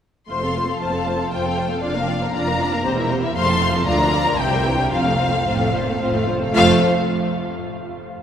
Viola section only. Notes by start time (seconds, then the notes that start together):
0.29 A3 F4
0.42 C4 A4
0.55 A3 F4
0.67 C4 A4
0.80 A3 F4
0.92 C4 A4
1.05 A3 F4
1.18 C4 A4
1.31 A3 F4
1.44 C4 A4
1.57 A3 F4
1.70 C4 A4
1.82 D4 F4
1.95 A#3 D4
2.08 D4 F4
2.21 A#3 D4
2.34 D4 F4
2.47 A#3 D4
2.59 D4 F4
2.72 A#3 D4
2.85 C4 G4
2.98 A#3 E4
3.10 C4 G4
3.22 A#3 E4
3.35 A3 F4
3.48 F3 C4
3.61 A3 F4
3.73 F3 C4
3.86 D3 F4
3.99 F3 D4
4.11 D3 F4
4.25 F3 D4
4.38 E3 E4
4.51 G3 G4
4.65 E3 E4
4.78 G3 G4
4.92 C4 F4
5.05 A3 C4
5.19 C4 F4
5.31 A3 C4
5.45 C4 F4
5.59 A3 C4
5.73 C4 F4
5.86 A3 C4
6.00 C4 F4
6.14 A3 C4
6.28 C4 F4
6.41 A3 C4
6.53 A3 F4